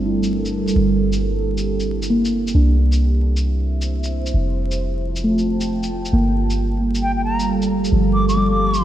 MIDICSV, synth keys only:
0, 0, Header, 1, 2, 480
1, 0, Start_track
1, 0, Tempo, 447761
1, 812, Time_signature, 4, 2, 24, 8
1, 9479, End_track
2, 0, Start_track
2, 0, Title_t, "Synth keys"
2, 0, Program_c, 0, 88
2, 0, Control_c, 0, 64, 127
2, 0, Note_on_c, 0, 60, 54
2, 0, Note_on_c, 0, 62, 64
2, 58, Note_on_c, 0, 64, 48
2, 946, Note_off_c, 0, 62, 0
2, 1424, Note_off_c, 0, 60, 0
2, 1553, Note_off_c, 0, 64, 0
2, 2250, Note_on_c, 0, 58, 69
2, 2727, Note_on_c, 0, 62, 56
2, 2747, Control_c, 0, 64, 0
2, 2906, Control_c, 0, 64, 127
2, 2928, Note_off_c, 0, 58, 0
2, 4304, Note_off_c, 0, 62, 0
2, 4663, Control_c, 0, 64, 0
2, 4880, Control_c, 0, 64, 127
2, 5614, Note_on_c, 0, 57, 57
2, 6571, Note_on_c, 0, 58, 69
2, 6586, Control_c, 0, 64, 0
2, 6770, Note_off_c, 0, 57, 0
2, 6776, Control_c, 0, 64, 127
2, 8146, Note_off_c, 0, 58, 0
2, 8492, Note_on_c, 0, 53, 56
2, 8967, Note_on_c, 0, 55, 69
2, 9432, Note_off_c, 0, 53, 0
2, 9445, Note_on_c, 0, 53, 73
2, 9479, Note_off_c, 0, 53, 0
2, 9479, Note_off_c, 0, 55, 0
2, 9479, End_track
0, 0, End_of_file